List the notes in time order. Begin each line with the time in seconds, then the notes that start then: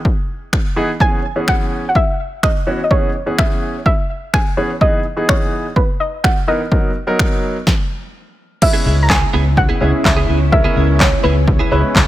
Already playing: E5
0.05 kick
0.53 finger snap, kick
0.76 E3 B3 D#4 G#4
1.00 E3 B3 C#4 G#4 G#5, kick
1.36 E3 B3 C#4 G#4
1.48 F#5, finger snap, kick
1.89 F#5
1.95 E5, kick
2.43 D#5, finger snap, kick
2.67 E3 B3 C#4 F#4
2.84 D#5
2.91 E3 B3 C#4 G#4 C#5, kick
3.26 E3 B3 C#4 G#4
3.39 E5, finger snap, kick
3.86 E5, kick
4.34 G#5, finger snap, kick
4.57 E3 B3 C#4 G#4
4.81 E3 B3 D#4 G#4 D#5, kick
5.17 E3 B3 D#4 G#4
5.29 C#5, finger snap, kick
5.76 B4, kick
6.00 D#5
6.24 F#5, finger snap, kick
6.47 E3 B3 D#4 A#4 D#5
6.71 F#3 B3 D#4 A#4, kick
7.07 F#3 B3 D#4 A#4
7.19 finger snap, kick
7.67 kick, snare
8.62 C#3 G#3 B3 C#4 E4 B4 E5, muted clean electric guitar stroke, kick, crash
8.73 B3 E4 G#4
8.85 C#2 B3 E4 G#4
8.97 muted clean electric guitar stroke
9.03 A#5
9.10 G#5, kick, snare, clap
9.22 muted clean electric guitar stroke
9.33 C#2 B3 E4 G#4
9.45 muted clean electric guitar stroke
9.57 F#5, muted clean electric guitar stroke, kick
9.69 B3 E4 G#4
9.81 C#2 G#3 B3 C#4 E4 G#4
9.93 muted clean electric guitar stroke
10.05 C#2 E5, muted clean electric guitar stroke, kick, snare, clap
10.17 B3 E4 G#4
10.28 C#2 B3 E4 G#4
10.41 muted clean electric guitar stroke
10.52 G#3 C#4 E4 A#4 E5, muted clean electric guitar stroke, kick
10.64 B3 E4 G#4
10.76 C#2 B3 E4 G#4
10.88 muted clean electric guitar stroke
11.00 C#5, kick, snare, clap
11.12 muted clean electric guitar stroke
11.23 C#2 B3 E4 G#4 B4
11.36 muted clean electric guitar stroke
11.48 muted clean electric guitar stroke, kick
11.59 B3 E4 G#4
11.71 C#2 G#3 B3 C#4 E4 G#4 B4
11.83 muted clean electric guitar stroke
11.95 C#2, kick, snare, clap